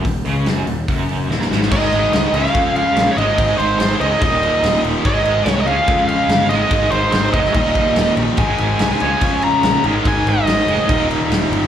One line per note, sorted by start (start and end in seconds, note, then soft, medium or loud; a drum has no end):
0.05 0.24 D#1 medium
0.05 0.22 D#2 medium
0.05 kick medium
0.05 open hi-hat medium
0.25 0.45 C#2 medium
0.25 0.46 C#3 loud
0.25 open hi-hat medium
0.46 0.66 F#1 medium
0.46 0.67 F#2 loud
0.46 snare loud
0.46 open hi-hat medium
0.66 0.86 D#1 medium
0.66 0.84 D#2 medium
0.66 open hi-hat medium
0.88 1.27 F#1 medium
0.88 1.30 F#2 loud
0.88 kick medium
0.88 open hi-hat medium
1.09 open hi-hat medium
1.29 1.49 D#1 medium
1.29 1.50 D#2 loud
1.29 snare medium
1.42 snare medium
1.50 1.70 G#1 medium
1.50 1.69 G#2 loud
1.50 snare medium
1.62 snare medium
1.71 1.84 G#1 loud
1.71 2.33 G#2 medium
1.71 2.33 D#3 loud
1.71 2.33 G#3 medium
1.71 2.34 C4 medium
1.71 2.34 D#4 loud
1.71 2.36 D#5 loud
1.71 kick loud
1.71 crash loud
1.71 crash medium
1.92 2.05 G#1 medium
1.92 crash medium
2.13 2.25 C#2 medium
2.13 snare loud
2.13 crash medium
2.33 2.46 C#2 medium
2.33 3.16 C#3 medium
2.33 3.16 G#3 medium
2.33 3.17 C#4 medium
2.33 3.17 F4 loud
2.33 3.17 G#4 loud
2.33 2.75 F5 medium
2.33 crash medium
2.46 snare soft
2.54 2.80 F2 medium
2.54 kick loud
2.54 crash medium
2.76 3.12 F5 medium
2.76 crash medium
2.97 3.09 A#1 medium
2.97 snare loud
2.97 crash medium
3.11 3.17 C#5 medium
3.17 3.29 G#1 medium
3.17 4.20 G#2 medium
3.17 4.20 D#3 loud
3.17 4.20 G#3 loud
3.17 4.21 C4 loud
3.17 4.21 D#4 loud
3.17 3.56 D#5 medium
3.17 crash medium
3.38 3.51 G#1 loud
3.38 kick loud
3.38 crash medium
3.58 3.71 G#1 medium
3.58 3.78 C5 medium
3.58 crash medium
3.79 3.92 G#1 medium
3.79 4.00 C5 medium
3.79 snare loud
3.79 crash medium
4.00 4.13 C#2 medium
4.00 4.22 G#2 medium
4.00 4.21 D#3 medium
4.00 4.20 G#3 loud
4.00 4.21 D#5 medium
4.00 crash medium
4.21 4.46 D#1 medium
4.21 5.03 D#2 medium
4.21 5.04 A#2 medium
4.21 5.04 D#3 loud
4.21 5.04 G3 loud
4.21 5.04 A#3 loud
4.21 5.04 D#4 loud
4.21 4.80 D#5 medium
4.21 kick loud
4.21 crash medium
4.43 crash medium
4.63 4.75 D#1 medium
4.63 snare loud
4.63 crash medium
4.83 4.96 D#1 loud
4.83 crash medium
5.05 5.17 G#1 loud
5.05 5.66 G#2 medium
5.05 5.66 D#3 loud
5.05 5.66 G#3 medium
5.05 5.67 C4 medium
5.05 5.67 D#4 loud
5.05 5.49 D#5 loud
5.05 kick loud
5.05 crash medium
5.25 5.37 G#1 medium
5.25 crash medium
5.45 5.67 C2 medium
5.45 5.60 C#5 loud
5.45 snare loud
5.45 crash medium
5.57 5.67 D#5 medium
5.57 snare soft
5.66 5.79 C#2 medium
5.66 6.49 C#3 medium
5.66 6.49 G#3 loud
5.66 6.49 C#4 loud
5.66 6.50 F4 medium
5.66 6.50 G#4 loud
5.66 6.07 F5 loud
5.66 crash medium
5.88 6.13 F2 medium
5.88 kick loud
5.88 crash medium
6.08 6.51 F5 loud
6.08 crash medium
6.29 6.51 G1 medium
6.29 snare loud
6.29 crash medium
6.49 6.63 G#1 medium
6.49 7.53 G#2 loud
6.49 7.53 D#3 medium
6.49 7.54 G#3 loud
6.49 7.54 C4 loud
6.49 7.54 D#4 loud
6.49 6.91 D#5 medium
6.49 crash medium
6.71 6.84 G#1 loud
6.71 kick loud
6.71 crash medium
6.91 7.04 G#1 medium
6.91 7.11 C5 medium
6.91 crash medium
7.12 7.25 G#1 medium
7.12 7.33 C5 medium
7.12 snare loud
7.12 crash medium
7.33 7.46 F1 medium
7.33 7.54 G#2 medium
7.33 7.54 D#3 medium
7.33 7.53 G#3 medium
7.33 7.52 D#5 medium
7.33 kick medium
7.33 crash medium
7.45 snare soft
7.54 7.80 D#1 medium
7.54 8.37 D#2 medium
7.54 8.37 A#2 loud
7.54 8.37 D#3 medium
7.54 8.37 G3 medium
7.54 8.38 A#3 medium
7.54 8.38 D#4 loud
7.54 8.13 D#5 loud
7.54 kick loud
7.54 crash medium
7.75 kick medium
7.75 crash medium
7.96 8.09 D#1 medium
7.96 snare loud
7.96 crash medium
8.17 8.30 A#1 medium
8.17 crash medium
8.37 8.50 G#1 loud
8.37 9.00 G#2 medium
8.37 9.00 D#3 medium
8.37 9.00 G#3 medium
8.37 9.01 C4 loud
8.37 9.01 D#4 loud
8.37 9.00 G#5 loud
8.37 kick loud
8.37 crash medium
8.58 8.72 G#1 medium
8.58 crash medium
8.79 8.93 C2 medium
8.79 snare loud
8.79 crash medium
8.91 snare soft
9.00 9.14 C#2 medium
9.00 9.83 C#3 medium
9.00 9.84 G#3 medium
9.00 9.84 C#4 loud
9.00 9.84 F4 medium
9.00 9.85 G#4 medium
9.00 9.44 G#5 loud
9.00 crash medium
9.21 9.47 F2 medium
9.21 kick loud
9.21 crash medium
9.42 9.82 A#5 loud
9.42 crash medium
9.63 9.76 A#1 medium
9.63 snare loud
9.63 crash medium
9.84 9.97 G#1 medium
9.84 10.88 G#2 medium
9.84 10.88 D#3 loud
9.84 10.89 G#3 loud
9.84 10.89 C4 medium
9.84 10.89 D#4 loud
9.84 crash medium
10.05 10.18 G#1 medium
10.05 10.26 G#5 loud
10.05 kick loud
10.05 crash medium
10.25 10.38 G#1 medium
10.25 11.08 D#5 medium
10.25 crash medium
10.46 10.59 G#1 medium
10.46 snare loud
10.46 crash medium
10.59 snare soft
10.67 10.80 F1 medium
10.67 10.89 G#2 medium
10.67 10.88 D#3 medium
10.67 10.88 G#3 medium
10.67 crash medium
10.88 11.14 D#1 medium
10.88 11.67 D#2 loud
10.88 11.67 A#2 loud
10.88 11.67 D#3 loud
10.88 11.67 G3 loud
10.88 11.67 A#3 loud
10.88 11.67 D#4 loud
10.88 kick loud
10.88 crash medium
11.11 crash medium
11.30 11.43 D#1 loud
11.30 snare loud
11.30 crash medium
11.50 11.64 G1 loud
11.50 crash medium